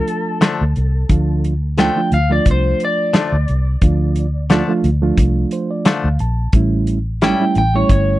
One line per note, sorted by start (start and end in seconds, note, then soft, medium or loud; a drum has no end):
0.00 0.40 F3 medium
0.00 0.41 A3 medium
0.00 0.41 D4 medium
0.00 0.41 F4 medium
0.00 1.41 A4 medium
0.08 closed hi-hat medium
0.41 0.63 D3 medium
0.41 0.63 F3 medium
0.41 0.63 A3 medium
0.41 0.63 D4 medium
0.41 snare loud
0.41 closed hi-hat medium
0.61 0.73 D2 medium
0.76 1.03 C2 medium
0.76 closed hi-hat soft
1.09 1.89 D2 medium
1.09 1.52 F3 medium
1.09 1.52 A3 medium
1.09 1.53 D4 medium
1.09 1.53 F4 medium
1.09 kick loud
1.09 closed hi-hat medium
1.44 closed hi-hat medium
1.78 1.99 D3 medium
1.78 1.89 F3 medium
1.78 2.00 F3 medium
1.78 1.89 A3 medium
1.78 2.00 A3 medium
1.78 1.89 D4 medium
1.78 2.00 D4 medium
1.78 1.90 F4 medium
1.78 2.12 G5 medium
1.78 snare medium
1.78 closed hi-hat medium
1.96 2.16 F3 medium
1.96 2.16 A3 medium
1.96 2.17 D4 medium
1.96 2.17 F4 medium
2.12 2.38 D2 medium
2.12 2.30 F5 medium
2.12 closed hi-hat medium
2.30 3.13 F3 medium
2.30 3.13 A3 medium
2.30 3.13 D4 medium
2.30 3.13 F4 medium
2.30 2.47 D5 medium
2.46 2.72 C2 medium
2.46 kick medium
2.46 closed hi-hat medium
2.51 2.82 C5 medium
2.80 closed hi-hat medium
2.85 4.83 D5 medium
3.13 3.35 D3 medium
3.13 3.35 F3 medium
3.13 3.36 A3 medium
3.13 3.36 D4 medium
3.13 snare loud
3.13 closed hi-hat medium
3.32 3.45 D2 medium
3.48 3.75 C2 medium
3.48 closed hi-hat soft
3.82 4.61 D2 medium
3.82 4.24 F3 medium
3.82 4.25 A3 medium
3.82 4.25 D4 medium
3.82 4.25 F4 medium
3.82 kick loud
3.82 closed hi-hat medium
4.16 closed hi-hat medium
4.50 4.71 D3 medium
4.50 4.61 F3 medium
4.50 4.72 F3 medium
4.50 4.62 A3 medium
4.50 4.72 A3 medium
4.50 4.62 D4 medium
4.50 4.72 D4 medium
4.50 4.62 F4 loud
4.50 snare medium
4.50 closed hi-hat medium
4.68 4.88 F3 medium
4.68 4.89 A3 medium
4.68 4.89 D4 medium
4.68 4.89 F4 medium
4.84 5.10 D2 medium
4.84 closed hi-hat medium
5.02 5.85 F3 medium
5.02 5.85 A3 medium
5.02 5.85 D4 medium
5.02 5.86 F4 medium
5.17 5.44 C2 medium
5.17 kick medium
5.17 closed hi-hat medium
5.51 5.69 C5 medium
5.51 closed hi-hat medium
5.71 5.85 D5 medium
5.85 6.07 D3 medium
5.85 6.08 F3 medium
5.85 6.08 A3 medium
5.85 6.08 D4 medium
5.85 6.18 F5 medium
5.85 snare loud
5.85 closed hi-hat medium
6.04 6.17 D2 medium
6.19 6.46 A#1 medium
6.19 6.52 A5 medium
6.19 closed hi-hat medium
6.53 7.32 A1 medium
6.53 6.97 G3 medium
6.53 6.97 A3 medium
6.53 6.97 C#4 medium
6.53 6.98 E4 medium
6.53 kick loud
6.53 closed hi-hat medium
6.87 closed hi-hat medium
7.22 7.44 A2 medium
7.22 7.33 G3 medium
7.22 7.44 G3 medium
7.22 7.34 A3 medium
7.22 7.44 C#4 medium
7.22 7.34 C#4 medium
7.22 7.44 E4 medium
7.22 7.34 E4 medium
7.22 7.56 G5 medium
7.22 snare loud
7.22 closed hi-hat medium
7.40 7.60 G3 medium
7.40 7.61 A3 medium
7.40 7.61 C#4 medium
7.40 7.61 E4 medium
7.55 7.82 A1 medium
7.55 7.75 G5 medium
7.55 closed hi-hat medium
7.75 8.19 G3 medium
7.75 8.19 A3 medium
7.75 8.19 C#4 medium
7.75 8.19 E4 medium
7.75 7.90 C#5 medium
7.89 8.16 G1 medium
7.89 8.19 C#5 medium
7.89 kick medium
7.89 closed hi-hat medium